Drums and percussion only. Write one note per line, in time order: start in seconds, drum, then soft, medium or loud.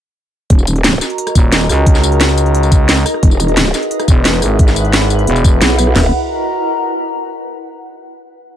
0.50 kick loud
0.50 closed hi-hat loud
0.59 tambourine soft
0.67 closed hi-hat medium
0.67 tambourine medium
0.76 closed hi-hat soft
0.84 snare loud
0.84 closed hi-hat loud
0.93 cross-stick soft
0.93 tambourine soft
1.01 snare soft
1.01 closed hi-hat medium
1.01 tambourine medium
1.10 closed hi-hat soft
1.18 closed hi-hat loud
1.27 cross-stick medium
1.27 closed hi-hat soft
1.27 tambourine soft
1.35 kick loud
1.35 closed hi-hat medium
1.35 tambourine medium
1.52 snare loud
1.52 closed hi-hat loud
1.61 tambourine soft
1.69 cross-stick soft
1.69 open hi-hat medium
1.69 tambourine medium
1.86 kick loud
1.86 closed hi-hat loud
1.95 snare soft
1.95 tambourine soft
2.04 closed hi-hat medium
2.04 tambourine medium
2.12 closed hi-hat soft
2.21 snare loud
2.21 closed hi-hat loud
2.29 cross-stick soft
2.29 tambourine soft
2.38 closed hi-hat medium
2.38 tambourine medium
2.46 closed hi-hat soft
2.55 closed hi-hat loud
2.63 closed hi-hat soft
2.63 tambourine soft
2.72 kick loud
2.72 closed hi-hat medium
2.72 tambourine medium
2.89 snare loud
2.89 closed hi-hat loud
2.97 tambourine soft
3.06 cross-stick soft
3.06 open hi-hat medium
3.06 tambourine medium
3.14 cross-stick soft
3.23 kick loud
3.23 closed hi-hat loud
3.31 tambourine soft
3.40 closed hi-hat medium
3.40 tambourine medium
3.48 closed hi-hat soft
3.57 snare loud
3.57 closed hi-hat medium
3.65 cross-stick soft
3.65 tambourine soft
3.74 snare soft
3.74 closed hi-hat medium
3.74 tambourine medium
3.82 closed hi-hat soft
3.91 closed hi-hat medium
4.00 cross-stick medium
4.00 closed hi-hat soft
4.00 tambourine soft
4.08 kick loud
4.08 closed hi-hat medium
4.08 tambourine medium
4.25 snare loud
4.25 closed hi-hat medium
4.34 tambourine soft
4.42 cross-stick soft
4.42 open hi-hat medium
4.42 tambourine medium
4.59 kick loud
4.59 closed hi-hat medium
4.68 snare soft
4.68 tambourine soft
4.76 closed hi-hat medium
4.76 tambourine medium
4.85 closed hi-hat soft
4.93 snare loud
4.93 closed hi-hat medium
5.02 cross-stick soft
5.02 tambourine soft
5.10 closed hi-hat medium
5.10 tambourine medium
5.19 closed hi-hat soft
5.27 closed hi-hat medium
5.36 closed hi-hat soft
5.36 tambourine soft
5.44 kick loud
5.44 closed hi-hat medium
5.44 tambourine medium
5.61 snare loud
5.61 closed hi-hat medium
5.70 tambourine soft
5.78 cross-stick soft
5.78 open hi-hat medium
5.78 tambourine medium
5.87 cross-stick soft
5.96 snare loud
5.96 floor tom loud
5.96 crash loud